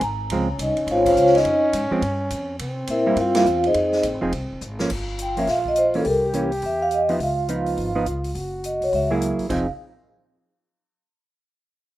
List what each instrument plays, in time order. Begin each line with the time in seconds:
0.01 upright bass G#1, vibraphone A#5, hi-hat pedal, ride
0.30 upright bass C#2, hollow-body jazz guitar F3 G#3 C4, trombone C#4, ride
0.59 upright bass C2, vibraphone D#4 D#5, hi-hat pedal, ride
0.68 upright bass G#1
0.77 upright bass F1, ride
0.87 upright bass G#1, ride
0.91 vibraphone F4 C5 C#5 F5
1.06 vibraphone F4 C5 C#5 F5, kick, crash
1.16 upright bass C#2, hi-hat pedal
1.26 snare
1.35 vibraphone D#4 D#5, snare, ride
1.44 upright bass F2, ride
1.73 upright bass G#2, hi-hat pedal, ride
1.91 hollow-body jazz guitar F3 G#3 C4, muted upright bass stroke
2.02 upright bass G2, ride
2.30 upright bass F2, hi-hat pedal, ride
2.59 upright bass C3, trombone C4, ride
2.87 upright bass A#2, vibraphone E4 A#4 C5 E5, hi-hat pedal, ride
3.06 hollow-body jazz guitar G3 A#3 E4
3.16 upright bass G2, ride
3.20 vibraphone F4 F5
3.35 hollow-body jazz guitar G3 A#3 E4, vibraphone F4 F5, snare, ride
3.45 upright bass E2, hi-hat pedal
3.64 vibraphone D#4 G#4 C5 D#5, ride
3.74 upright bass F2, trombone C4, ride
3.92 snare
4.03 upright bass A#1, hi-hat pedal, ride
4.14 upright bass G#1
4.21 upright bass F1, hollow-body jazz guitar F3 C4 D#4 G#4
4.32 upright bass C2, ride
4.42 upright bass G#1
4.53 upright bass F1
4.61 upright bass G#1, hi-hat pedal
4.79 hollow-body jazz guitar F3 A#3 C#4, snare
4.89 upright bass G1, trombone F4, kick, crash
5.19 vibraphone G5, closed hi-hat
5.37 hollow-body jazz guitar F3 A#3 C#4, vibraphone E5, open hi-hat
5.47 upright bass A#1, vibraphone F5, snare, open hi-hat
5.66 vibraphone D#5, kick
5.76 vibraphone C5, closed hi-hat
5.94 hollow-body jazz guitar E3 A#3 C#4, vibraphone A4, open hi-hat
6.05 upright bass C2, trombone G4, vibraphone A#4, open hi-hat
6.26 vibraphone G4
6.33 hollow-body jazz guitar E3 A#3 C#4, closed hi-hat
6.52 open hi-hat
6.62 upright bass E2, open hi-hat
6.66 vibraphone E5
6.82 vibraphone F5
6.91 vibraphone D#5, closed hi-hat
7.09 hollow-body jazz guitar F3 B3 D#4, vibraphone E5, open hi-hat
7.19 upright bass C#2, trombone F4, open hi-hat
7.23 vibraphone F5
7.48 hollow-body jazz guitar F3 B3 D#4, closed hi-hat
7.66 open hi-hat
7.77 upright bass G#1, open hi-hat
7.95 hollow-body jazz guitar F3 B3 D#4
8.06 upright bass C#2, closed hi-hat
8.24 open hi-hat
8.35 upright bass F#1, trombone F#4, open hi-hat
8.64 vibraphone D#5, closed hi-hat
8.81 upright bass C#2, vibraphone C#5, open hi-hat
8.93 upright bass C#2, vibraphone E5, open hi-hat
9.11 hollow-body jazz guitar F#3 A#3 E4 G#4
9.22 closed hi-hat
9.39 muted upright bass stroke, kick, open hi-hat
9.49 upright bass F1, hollow-body jazz guitar F3 C4 D#4 G#4, trombone G#4, vibraphone F5, kick, crash